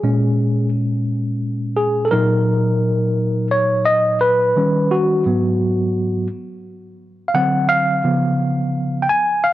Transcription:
0, 0, Header, 1, 2, 480
1, 0, Start_track
1, 0, Tempo, 697674
1, 1699, Time_signature, 4, 2, 24, 8
1, 6557, End_track
2, 0, Start_track
2, 0, Title_t, "Tine electric piano"
2, 0, Program_c, 0, 4
2, 0, Note_on_c, 0, 68, 80
2, 23, Note_on_c, 0, 46, 55
2, 25, Note_on_c, 0, 56, 50
2, 30, Note_on_c, 0, 61, 63
2, 473, Note_off_c, 0, 68, 0
2, 1215, Note_on_c, 0, 68, 77
2, 1412, Note_on_c, 0, 69, 66
2, 1424, Note_off_c, 0, 68, 0
2, 1434, Note_off_c, 0, 46, 0
2, 1434, Note_off_c, 0, 56, 0
2, 1437, Note_off_c, 0, 61, 0
2, 1454, Note_on_c, 0, 70, 88
2, 1455, Note_off_c, 0, 69, 0
2, 1457, Note_on_c, 0, 54, 56
2, 1464, Note_on_c, 0, 46, 55
2, 1464, Note_on_c, 0, 63, 60
2, 2389, Note_off_c, 0, 70, 0
2, 2418, Note_on_c, 0, 73, 92
2, 2642, Note_off_c, 0, 73, 0
2, 2653, Note_on_c, 0, 75, 96
2, 2879, Note_off_c, 0, 75, 0
2, 2896, Note_on_c, 0, 71, 97
2, 3111, Note_off_c, 0, 54, 0
2, 3114, Note_off_c, 0, 46, 0
2, 3114, Note_off_c, 0, 63, 0
2, 3139, Note_on_c, 0, 51, 52
2, 3144, Note_on_c, 0, 55, 43
2, 3149, Note_on_c, 0, 61, 55
2, 3379, Note_on_c, 0, 66, 76
2, 3392, Note_off_c, 0, 71, 0
2, 3595, Note_off_c, 0, 51, 0
2, 3598, Note_off_c, 0, 55, 0
2, 3600, Note_off_c, 0, 61, 0
2, 3617, Note_on_c, 0, 44, 54
2, 3621, Note_on_c, 0, 54, 53
2, 3626, Note_on_c, 0, 59, 54
2, 4311, Note_off_c, 0, 44, 0
2, 4312, Note_off_c, 0, 66, 0
2, 4313, Note_off_c, 0, 54, 0
2, 4315, Note_off_c, 0, 59, 0
2, 5009, Note_on_c, 0, 77, 62
2, 5051, Note_on_c, 0, 50, 57
2, 5054, Note_off_c, 0, 77, 0
2, 5054, Note_on_c, 0, 78, 97
2, 5055, Note_on_c, 0, 54, 51
2, 5060, Note_on_c, 0, 60, 57
2, 5288, Note_on_c, 0, 77, 107
2, 5304, Note_off_c, 0, 78, 0
2, 5511, Note_off_c, 0, 50, 0
2, 5513, Note_off_c, 0, 54, 0
2, 5516, Note_off_c, 0, 60, 0
2, 5532, Note_on_c, 0, 49, 55
2, 5534, Note_on_c, 0, 53, 53
2, 5538, Note_on_c, 0, 59, 56
2, 6209, Note_on_c, 0, 79, 76
2, 6228, Note_off_c, 0, 49, 0
2, 6229, Note_off_c, 0, 53, 0
2, 6231, Note_off_c, 0, 59, 0
2, 6242, Note_off_c, 0, 77, 0
2, 6254, Note_off_c, 0, 79, 0
2, 6257, Note_on_c, 0, 80, 102
2, 6493, Note_on_c, 0, 77, 95
2, 6505, Note_off_c, 0, 80, 0
2, 6557, Note_off_c, 0, 77, 0
2, 6557, End_track
0, 0, End_of_file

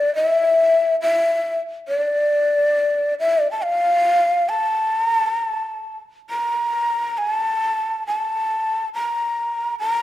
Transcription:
0, 0, Header, 1, 2, 480
1, 0, Start_track
1, 0, Tempo, 869565
1, 63, Time_signature, 4, 2, 24, 8
1, 2464, Tempo, 891530
1, 3904, Tempo, 874636
1, 5487, End_track
2, 0, Start_track
2, 0, Title_t, "Shakuhachi"
2, 0, Program_c, 0, 77
2, 0, Note_on_c, 0, 74, 93
2, 74, Note_off_c, 0, 74, 0
2, 83, Note_on_c, 0, 76, 102
2, 527, Note_off_c, 0, 76, 0
2, 562, Note_on_c, 0, 76, 102
2, 860, Note_off_c, 0, 76, 0
2, 1039, Note_on_c, 0, 74, 101
2, 1734, Note_off_c, 0, 74, 0
2, 1765, Note_on_c, 0, 76, 92
2, 1935, Note_off_c, 0, 76, 0
2, 1938, Note_on_c, 0, 81, 81
2, 2006, Note_on_c, 0, 77, 105
2, 2014, Note_off_c, 0, 81, 0
2, 2477, Note_on_c, 0, 81, 94
2, 2485, Note_off_c, 0, 77, 0
2, 2929, Note_off_c, 0, 81, 0
2, 2929, Note_on_c, 0, 82, 94
2, 2994, Note_off_c, 0, 82, 0
2, 2994, Note_on_c, 0, 81, 94
2, 3280, Note_off_c, 0, 81, 0
2, 3452, Note_on_c, 0, 82, 95
2, 3925, Note_on_c, 0, 80, 98
2, 3934, Note_off_c, 0, 82, 0
2, 4008, Note_off_c, 0, 80, 0
2, 4008, Note_on_c, 0, 81, 98
2, 4396, Note_off_c, 0, 81, 0
2, 4415, Note_on_c, 0, 81, 92
2, 4860, Note_off_c, 0, 81, 0
2, 4895, Note_on_c, 0, 82, 91
2, 5335, Note_off_c, 0, 82, 0
2, 5361, Note_on_c, 0, 81, 100
2, 5422, Note_off_c, 0, 81, 0
2, 5422, Note_on_c, 0, 82, 100
2, 5487, Note_off_c, 0, 82, 0
2, 5487, End_track
0, 0, End_of_file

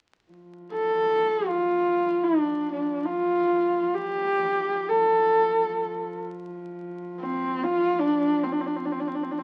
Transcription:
0, 0, Header, 1, 3, 480
1, 0, Start_track
1, 0, Tempo, 500000
1, 9054, End_track
2, 0, Start_track
2, 0, Title_t, "Horsehead fiddle"
2, 0, Program_c, 0, 110
2, 700, Note_on_c, 0, 69, 81
2, 1417, Note_on_c, 0, 65, 82
2, 1431, Note_off_c, 0, 69, 0
2, 2145, Note_on_c, 0, 62, 73
2, 2159, Note_off_c, 0, 65, 0
2, 2613, Note_off_c, 0, 62, 0
2, 2619, Note_on_c, 0, 62, 63
2, 2927, Note_on_c, 0, 65, 79
2, 2941, Note_off_c, 0, 62, 0
2, 3785, Note_on_c, 0, 67, 90
2, 3800, Note_off_c, 0, 65, 0
2, 4691, Note_on_c, 0, 69, 79
2, 4705, Note_off_c, 0, 67, 0
2, 5976, Note_off_c, 0, 69, 0
2, 6916, Note_on_c, 0, 60, 74
2, 7328, Note_on_c, 0, 65, 84
2, 7342, Note_off_c, 0, 60, 0
2, 7677, Note_on_c, 0, 62, 76
2, 7691, Note_off_c, 0, 65, 0
2, 8099, Note_on_c, 0, 60, 56
2, 8114, Note_off_c, 0, 62, 0
2, 8184, Note_on_c, 0, 62, 57
2, 8198, Note_off_c, 0, 60, 0
2, 8262, Note_on_c, 0, 60, 55
2, 8276, Note_off_c, 0, 62, 0
2, 8316, Note_on_c, 0, 62, 46
2, 8331, Note_off_c, 0, 60, 0
2, 8407, Note_on_c, 0, 60, 53
2, 8422, Note_off_c, 0, 62, 0
2, 8496, Note_on_c, 0, 62, 54
2, 8510, Note_off_c, 0, 60, 0
2, 8559, Note_on_c, 0, 60, 58
2, 8574, Note_off_c, 0, 62, 0
2, 8637, Note_on_c, 0, 62, 52
2, 8652, Note_off_c, 0, 60, 0
2, 8714, Note_on_c, 0, 60, 52
2, 8728, Note_off_c, 0, 62, 0
2, 8782, Note_on_c, 0, 62, 49
2, 8796, Note_off_c, 0, 60, 0
2, 8860, Note_on_c, 0, 60, 48
2, 8874, Note_off_c, 0, 62, 0
2, 8942, Note_on_c, 0, 62, 51
2, 8957, Note_off_c, 0, 60, 0
2, 9011, Note_on_c, 0, 60, 51
2, 9025, Note_off_c, 0, 62, 0
2, 9054, Note_off_c, 0, 60, 0
2, 9054, End_track
3, 0, Start_track
3, 0, Title_t, "Horsehead fiddle"
3, 0, Program_c, 1, 110
3, 302, Note_on_c, 1, 53, 54
3, 4762, Note_off_c, 1, 53, 0
3, 4768, Note_on_c, 1, 53, 58
3, 9054, Note_off_c, 1, 53, 0
3, 9054, End_track
0, 0, End_of_file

